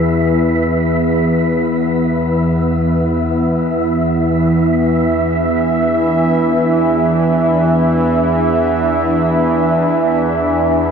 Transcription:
0, 0, Header, 1, 4, 480
1, 0, Start_track
1, 0, Tempo, 500000
1, 10476, End_track
2, 0, Start_track
2, 0, Title_t, "Synth texture"
2, 0, Program_c, 0, 99
2, 0, Note_on_c, 0, 76, 67
2, 10476, Note_off_c, 0, 76, 0
2, 10476, End_track
3, 0, Start_track
3, 0, Title_t, "Analog synth pad"
3, 0, Program_c, 1, 89
3, 0, Note_on_c, 1, 52, 75
3, 0, Note_on_c, 1, 59, 66
3, 0, Note_on_c, 1, 64, 70
3, 0, Note_on_c, 1, 71, 67
3, 3490, Note_on_c, 1, 76, 74
3, 3530, Note_off_c, 1, 71, 0
3, 4806, Note_on_c, 1, 62, 74
3, 5119, Note_off_c, 1, 64, 0
3, 10476, Note_off_c, 1, 52, 0
3, 10476, Note_off_c, 1, 59, 0
3, 10476, Note_off_c, 1, 62, 0
3, 10476, Note_off_c, 1, 76, 0
3, 10476, End_track
4, 0, Start_track
4, 0, Title_t, "Synth drone"
4, 0, Program_c, 2, 95
4, 0, Note_on_c, 2, 40, 74
4, 0, Note_on_c, 2, 52, 79
4, 10476, Note_off_c, 2, 40, 0
4, 10476, Note_off_c, 2, 52, 0
4, 10476, End_track
0, 0, End_of_file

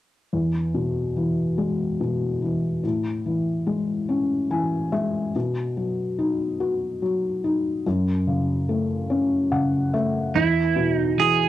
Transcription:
0, 0, Header, 1, 3, 480
1, 0, Start_track
1, 0, Key_signature, 4, "major"
1, 0, Tempo, 834492
1, 193, Time_signature, 6, 3, 24, 8
1, 6608, End_track
2, 0, Start_track
2, 0, Title_t, "Clean electric guitar"
2, 0, Program_c, 0, 27
2, 5957, Note_on_c, 0, 64, 55
2, 6297, Note_off_c, 0, 64, 0
2, 6297, Note_on_c, 0, 63, 55
2, 6440, Note_on_c, 0, 68, 62
2, 6450, Note_off_c, 0, 63, 0
2, 6608, Note_off_c, 0, 68, 0
2, 6608, End_track
3, 0, Start_track
3, 0, Title_t, "Felt piano"
3, 0, Program_c, 1, 0
3, 189, Note_on_c, 1, 40, 37
3, 287, Control_c, 1, 64, 127
3, 427, Note_on_c, 1, 47, 29
3, 670, Note_on_c, 1, 52, 34
3, 908, Note_on_c, 1, 56, 33
3, 1145, Note_off_c, 1, 47, 0
3, 1153, Note_on_c, 1, 47, 31
3, 1384, Note_off_c, 1, 52, 0
3, 1393, Note_on_c, 1, 52, 34
3, 1610, Note_off_c, 1, 40, 0
3, 1610, Note_off_c, 1, 56, 0
3, 1620, Note_off_c, 1, 47, 0
3, 1627, Note_off_c, 1, 52, 0
3, 1630, Note_on_c, 1, 45, 40
3, 1641, Control_c, 1, 64, 0
3, 1735, Control_c, 1, 64, 127
3, 1874, Note_on_c, 1, 52, 34
3, 2109, Note_on_c, 1, 56, 34
3, 2351, Note_on_c, 1, 61, 35
3, 2585, Note_off_c, 1, 52, 0
3, 2593, Note_on_c, 1, 80, 43
3, 2594, Note_on_c, 1, 52, 33
3, 2818, Note_off_c, 1, 80, 0
3, 2824, Note_off_c, 1, 56, 0
3, 2832, Note_on_c, 1, 76, 44
3, 2833, Note_on_c, 1, 56, 36
3, 3051, Note_off_c, 1, 45, 0
3, 3052, Note_off_c, 1, 61, 0
3, 3057, Note_off_c, 1, 76, 0
3, 3061, Note_off_c, 1, 52, 0
3, 3067, Note_off_c, 1, 56, 0
3, 3081, Note_on_c, 1, 47, 44
3, 3084, Control_c, 1, 64, 0
3, 3178, Control_c, 1, 64, 127
3, 3319, Note_on_c, 1, 54, 32
3, 3559, Note_on_c, 1, 63, 35
3, 3797, Note_on_c, 1, 66, 36
3, 4029, Note_off_c, 1, 54, 0
3, 4038, Note_on_c, 1, 54, 37
3, 4271, Note_off_c, 1, 63, 0
3, 4280, Note_on_c, 1, 63, 38
3, 4495, Note_off_c, 1, 66, 0
3, 4496, Note_off_c, 1, 47, 0
3, 4503, Note_off_c, 1, 54, 0
3, 4511, Note_off_c, 1, 63, 0
3, 4524, Control_c, 1, 64, 0
3, 4524, Note_on_c, 1, 42, 43
3, 4632, Control_c, 1, 64, 127
3, 4758, Note_on_c, 1, 49, 34
3, 4998, Note_on_c, 1, 57, 36
3, 5234, Note_on_c, 1, 61, 37
3, 5465, Note_off_c, 1, 49, 0
3, 5474, Note_on_c, 1, 49, 36
3, 5474, Note_on_c, 1, 78, 46
3, 5698, Note_off_c, 1, 78, 0
3, 5709, Note_off_c, 1, 57, 0
3, 5715, Note_on_c, 1, 76, 45
3, 5718, Note_on_c, 1, 57, 37
3, 5933, Note_off_c, 1, 61, 0
3, 5936, Note_off_c, 1, 42, 0
3, 5938, Note_off_c, 1, 76, 0
3, 5940, Note_off_c, 1, 49, 0
3, 5949, Note_off_c, 1, 57, 0
3, 5954, Note_on_c, 1, 40, 46
3, 5962, Control_c, 1, 64, 0
3, 6081, Control_c, 1, 64, 127
3, 6189, Note_on_c, 1, 47, 35
3, 6429, Note_on_c, 1, 52, 37
3, 6608, Note_off_c, 1, 40, 0
3, 6608, Note_off_c, 1, 47, 0
3, 6608, Note_off_c, 1, 52, 0
3, 6608, End_track
0, 0, End_of_file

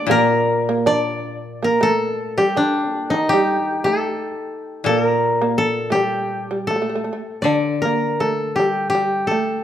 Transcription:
0, 0, Header, 1, 4, 480
1, 0, Start_track
1, 0, Tempo, 761421
1, 67, Time_signature, 2, 2, 24, 8
1, 1511, Tempo, 736196
1, 1991, Tempo, 703400
1, 3911, Tempo, 758534
1, 5351, Tempo, 734394
1, 6276, End_track
2, 0, Start_track
2, 0, Title_t, "Koto"
2, 0, Program_c, 0, 107
2, 0, Note_on_c, 0, 74, 97
2, 69, Note_on_c, 0, 70, 84
2, 545, Note_off_c, 0, 74, 0
2, 547, Note_on_c, 0, 74, 73
2, 1034, Note_off_c, 0, 70, 0
2, 1036, Note_on_c, 0, 70, 60
2, 1152, Note_on_c, 0, 69, 70
2, 1190, Note_off_c, 0, 70, 0
2, 1498, Note_on_c, 0, 67, 61
2, 1558, Note_off_c, 0, 74, 0
2, 1624, Note_on_c, 0, 62, 62
2, 1971, Note_on_c, 0, 63, 59
2, 2011, Note_off_c, 0, 62, 0
2, 2097, Note_off_c, 0, 67, 0
2, 2099, Note_on_c, 0, 67, 67
2, 2399, Note_off_c, 0, 69, 0
2, 2475, Note_on_c, 0, 69, 63
2, 3170, Note_off_c, 0, 69, 0
2, 3170, Note_on_c, 0, 69, 75
2, 3280, Note_off_c, 0, 69, 0
2, 3280, Note_on_c, 0, 70, 75
2, 3491, Note_off_c, 0, 67, 0
2, 3569, Note_off_c, 0, 63, 0
2, 3661, Note_on_c, 0, 69, 70
2, 3701, Note_off_c, 0, 70, 0
2, 3891, Note_on_c, 0, 67, 65
2, 4367, Note_off_c, 0, 69, 0
2, 4370, Note_on_c, 0, 69, 60
2, 4844, Note_on_c, 0, 74, 61
2, 5095, Note_on_c, 0, 70, 55
2, 5133, Note_off_c, 0, 69, 0
2, 5184, Note_off_c, 0, 67, 0
2, 5338, Note_on_c, 0, 69, 59
2, 5377, Note_off_c, 0, 70, 0
2, 5570, Note_on_c, 0, 67, 59
2, 5789, Note_off_c, 0, 67, 0
2, 5792, Note_on_c, 0, 67, 58
2, 5873, Note_off_c, 0, 74, 0
2, 6034, Note_off_c, 0, 69, 0
2, 6037, Note_on_c, 0, 69, 57
2, 6276, Note_off_c, 0, 67, 0
2, 6276, Note_off_c, 0, 69, 0
2, 6276, End_track
3, 0, Start_track
3, 0, Title_t, "Shamisen"
3, 0, Program_c, 1, 106
3, 62, Note_on_c, 1, 58, 65
3, 394, Note_off_c, 1, 58, 0
3, 434, Note_on_c, 1, 58, 60
3, 543, Note_off_c, 1, 58, 0
3, 543, Note_on_c, 1, 62, 63
3, 888, Note_off_c, 1, 62, 0
3, 1025, Note_on_c, 1, 58, 50
3, 1137, Note_off_c, 1, 58, 0
3, 1139, Note_on_c, 1, 57, 57
3, 1477, Note_off_c, 1, 57, 0
3, 1502, Note_on_c, 1, 55, 57
3, 1618, Note_off_c, 1, 55, 0
3, 1621, Note_on_c, 1, 50, 50
3, 1849, Note_off_c, 1, 50, 0
3, 1849, Note_on_c, 1, 46, 50
3, 1960, Note_off_c, 1, 46, 0
3, 1996, Note_on_c, 1, 51, 49
3, 2109, Note_off_c, 1, 51, 0
3, 2127, Note_on_c, 1, 55, 60
3, 2353, Note_off_c, 1, 55, 0
3, 2353, Note_on_c, 1, 51, 60
3, 2455, Note_off_c, 1, 51, 0
3, 2489, Note_on_c, 1, 57, 50
3, 2808, Note_off_c, 1, 57, 0
3, 3190, Note_on_c, 1, 58, 62
3, 3523, Note_off_c, 1, 58, 0
3, 3549, Note_on_c, 1, 58, 62
3, 3846, Note_off_c, 1, 58, 0
3, 3881, Note_on_c, 1, 57, 43
3, 3911, Note_off_c, 1, 57, 0
3, 3913, Note_on_c, 1, 55, 54
3, 4236, Note_off_c, 1, 55, 0
3, 4266, Note_on_c, 1, 55, 47
3, 4372, Note_off_c, 1, 55, 0
3, 4392, Note_on_c, 1, 57, 48
3, 4418, Note_off_c, 1, 57, 0
3, 4425, Note_on_c, 1, 57, 34
3, 4455, Note_off_c, 1, 57, 0
3, 4463, Note_on_c, 1, 57, 41
3, 4503, Note_off_c, 1, 57, 0
3, 4511, Note_on_c, 1, 57, 29
3, 4541, Note_off_c, 1, 57, 0
3, 4549, Note_on_c, 1, 57, 34
3, 4598, Note_off_c, 1, 57, 0
3, 4605, Note_on_c, 1, 57, 33
3, 4651, Note_off_c, 1, 57, 0
3, 4658, Note_on_c, 1, 57, 36
3, 4708, Note_off_c, 1, 57, 0
3, 4864, Note_on_c, 1, 62, 53
3, 5094, Note_off_c, 1, 62, 0
3, 5116, Note_on_c, 1, 58, 48
3, 5337, Note_off_c, 1, 58, 0
3, 5342, Note_on_c, 1, 57, 52
3, 5571, Note_off_c, 1, 57, 0
3, 5595, Note_on_c, 1, 55, 54
3, 5815, Note_off_c, 1, 55, 0
3, 5825, Note_on_c, 1, 55, 55
3, 6049, Note_off_c, 1, 55, 0
3, 6065, Note_on_c, 1, 57, 53
3, 6250, Note_off_c, 1, 57, 0
3, 6276, End_track
4, 0, Start_track
4, 0, Title_t, "Koto"
4, 0, Program_c, 2, 107
4, 41, Note_on_c, 2, 46, 57
4, 1497, Note_off_c, 2, 46, 0
4, 3156, Note_on_c, 2, 46, 47
4, 4607, Note_off_c, 2, 46, 0
4, 4855, Note_on_c, 2, 50, 32
4, 6276, Note_off_c, 2, 50, 0
4, 6276, End_track
0, 0, End_of_file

